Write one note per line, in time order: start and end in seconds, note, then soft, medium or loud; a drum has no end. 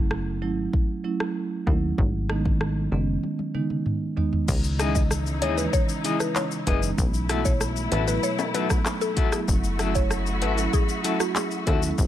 0.00 0.44 F#1 loud
0.11 cross-stick medium
0.42 0.68 G#1 loud
0.42 0.54 F#3 medium
0.42 0.55 A3 medium
0.42 0.55 C#4 medium
0.42 0.55 E4 medium
0.73 kick loud
1.04 1.17 F#3 medium
1.04 1.17 A3 medium
1.04 1.17 C#4 medium
1.04 1.17 E4 loud
1.20 cross-stick medium
1.67 1.93 D#2 medium
1.67 1.79 F#3 medium
1.67 1.80 A3 medium
1.67 1.80 C#4 medium
1.67 1.80 E4 medium
1.67 kick medium
1.98 2.88 G#1 loud
1.98 kick loud
2.29 2.42 D#3 medium
2.29 2.42 G#3 medium
2.29 2.42 B3 medium
2.29 2.42 D#4 loud
2.29 cross-stick medium
2.45 kick loud
2.61 cross-stick medium
2.92 3.18 F#1 medium
2.92 3.04 D#3 medium
2.92 3.05 G#3 medium
2.92 3.05 B3 medium
2.92 3.05 C#4 medium
3.23 high tom medium
3.39 high tom medium
3.54 3.67 D#3 medium
3.54 3.67 G#3 medium
3.54 3.67 B3 medium
3.54 3.67 D#4 loud
3.54 mid tom medium
3.70 mid tom medium
3.86 mid tom medium
4.17 4.30 D#3 medium
4.17 4.30 G#3 medium
4.17 4.30 B3 medium
4.17 4.30 D#4 loud
4.17 floor tom loud
4.33 floor tom medium
4.48 5.44 C#2 loud
4.48 6.96 C#3 medium
4.48 6.96 D#4 medium
4.48 6.96 E4 medium
4.48 kick loud
4.48 crash loud
4.48 shaker medium
4.64 shaker medium
4.79 4.92 E3 medium
4.79 4.92 G#3 medium
4.79 4.92 C#4 medium
4.79 4.92 D#4 medium
4.79 5.01 E4 loud
4.79 5.01 G#4 medium
4.79 5.02 D#5 loud
4.79 cross-stick medium
4.79 closed hi-hat medium
4.79 shaker medium
4.95 5.09 D#5 medium
4.95 kick loud
4.95 shaker medium
5.11 cross-stick medium
5.11 shaker medium
5.26 shaker medium
5.42 5.68 D#2 medium
5.42 5.48 C#4 medium
5.42 5.63 E4 medium
5.42 5.48 E4 medium
5.42 5.64 G#4 medium
5.42 5.56 C#5 medium
5.42 5.64 D#5 medium
5.42 closed hi-hat medium
5.42 shaker medium
5.57 5.70 E3 medium
5.57 5.70 G#3 medium
5.57 5.70 C#4 medium
5.57 5.70 D#4 medium
5.57 5.71 B4 medium
5.57 shaker medium
5.73 5.87 C#5 medium
5.73 kick loud
5.73 shaker medium
5.89 shaker soft
5.89 shaker medium
6.04 6.17 E3 medium
6.04 6.17 G#3 medium
6.04 6.17 C#4 medium
6.04 6.26 E4 medium
6.04 6.17 E4 medium
6.04 6.20 G#4 medium
6.04 6.19 D#5 medium
6.04 closed hi-hat medium
6.04 shaker medium
6.20 6.34 B4 medium
6.20 muted clean electric guitar stroke soft
6.20 cross-stick medium
6.20 shaker medium
6.36 6.49 C#5 medium
6.36 clap loud
6.36 shaker medium
6.51 shaker medium
6.67 6.93 F#1 medium
6.67 6.73 C#4 medium
6.67 6.73 D#4 medium
6.67 6.88 E4 medium
6.67 6.89 G#4 medium
6.67 6.81 B4 medium
6.67 6.89 D#5 loud
6.67 kick medium
6.67 closed hi-hat medium
6.67 shaker medium
6.82 6.95 E3 medium
6.82 6.95 G#3 medium
6.82 6.95 C#4 medium
6.82 6.95 D#4 medium
6.82 shaker medium
6.98 7.88 B1 loud
6.98 9.46 B2 medium
6.98 11.94 A3 medium
6.98 9.46 E4 medium
6.98 kick loud
6.98 shaker medium
7.14 shaker medium
7.29 7.42 F#3 medium
7.29 7.42 A3 medium
7.29 7.42 B3 medium
7.29 7.42 E4 medium
7.29 7.51 F#4 medium
7.29 7.51 A4 medium
7.29 7.52 E5 loud
7.29 cross-stick medium
7.29 closed hi-hat medium
7.29 shaker medium
7.45 7.59 C#5 medium
7.45 kick loud
7.45 shaker medium
7.61 cross-stick medium
7.61 shaker medium
7.76 shaker medium
7.92 8.18 A1 loud
7.92 7.98 B3 medium
7.92 7.98 E4 medium
7.92 8.13 F#4 medium
7.92 8.14 A4 medium
7.92 8.05 B4 medium
7.92 8.14 E5 loud
7.92 closed hi-hat medium
7.92 shaker medium
8.08 8.20 F#3 medium
8.08 8.20 A3 medium
8.08 8.20 B3 medium
8.08 8.20 E4 medium
8.08 8.21 B4 medium
8.08 shaker medium
8.23 8.37 C#5 medium
8.23 shaker medium
8.39 high timbale medium
8.39 shaker soft
8.39 shaker medium
8.54 8.67 F#3 medium
8.54 8.67 A3 medium
8.54 8.67 B3 medium
8.54 8.67 D#4 medium
8.54 8.76 F#4 medium
8.54 8.70 A4 medium
8.54 8.68 B4 medium
8.54 8.69 E5 loud
8.54 closed hi-hat medium
8.54 shaker medium
8.70 kick medium
8.70 cross-stick medium
8.70 shaker medium
8.86 cross-stick medium
8.86 clap loud
8.86 shaker medium
9.01 9.15 A4 medium
9.01 shaker medium
9.17 9.23 B3 medium
9.17 9.23 E4 medium
9.17 9.38 F#4 medium
9.17 9.39 A4 medium
9.17 9.39 E5 loud
9.17 kick medium
9.17 closed hi-hat medium
9.17 shaker medium
9.32 9.45 F#3 medium
9.32 9.45 A3 medium
9.32 9.45 B3 medium
9.32 9.45 E4 medium
9.32 9.46 G#4 medium
9.32 cross-stick medium
9.32 shaker medium
9.48 10.44 F#1 loud
9.48 11.96 E4 medium
9.48 11.96 F#4 medium
9.48 kick loud
9.48 shaker medium
9.64 shaker medium
9.79 9.92 F#3 medium
9.79 9.92 A3 medium
9.79 9.92 C#4 medium
9.79 9.92 E4 medium
9.79 10.01 F#4 medium
9.79 10.01 A4 medium
9.79 10.02 E5 loud
9.79 cross-stick medium
9.79 closed hi-hat medium
9.79 shaker medium
9.95 10.09 C#5 medium
9.95 kick loud
9.95 shaker medium
10.11 cross-stick medium
10.11 shaker medium
10.26 shaker medium
10.42 10.68 G#1 loud
10.42 10.48 C#4 medium
10.42 10.48 E4 medium
10.42 10.63 F#4 medium
10.42 10.64 A4 medium
10.42 10.56 B4 medium
10.42 10.64 E5 loud
10.42 closed hi-hat medium
10.42 shaker medium
10.57 10.70 F#3 medium
10.57 10.70 A3 medium
10.57 10.70 C#4 medium
10.57 10.70 E4 medium
10.57 10.71 A4 medium
10.57 shaker medium
10.73 10.87 G#4 medium
10.73 kick loud
10.73 shaker medium
10.89 shaker medium
11.04 11.17 F#3 medium
11.04 11.17 A3 medium
11.04 11.17 C#4 medium
11.04 11.17 E4 medium
11.04 11.26 F#4 medium
11.04 11.19 A4 medium
11.04 11.19 E5 loud
11.04 closed hi-hat medium
11.04 shaker medium
11.20 11.34 F#4 medium
11.20 muted clean electric guitar stroke soft
11.20 cross-stick loud
11.20 shaker medium
11.36 11.49 G#4 medium
11.36 clap medium
11.36 shaker medium
11.51 shaker medium
11.67 11.93 D#2 loud
11.67 11.88 F#4 medium
11.67 11.80 A4 medium
11.67 11.89 A4 medium
11.67 11.89 E5 medium
11.67 kick medium
11.67 closed hi-hat medium
11.67 shaker medium
11.82 11.95 F#3 medium
11.82 11.95 A3 medium
11.82 11.95 C#4 medium
11.82 11.95 E4 medium
11.82 shaker medium
11.98 12.07 G#1 loud
11.98 12.07 B2 medium
11.98 12.07 G#3 medium
11.98 12.07 D#4 medium
11.98 kick loud
11.98 shaker medium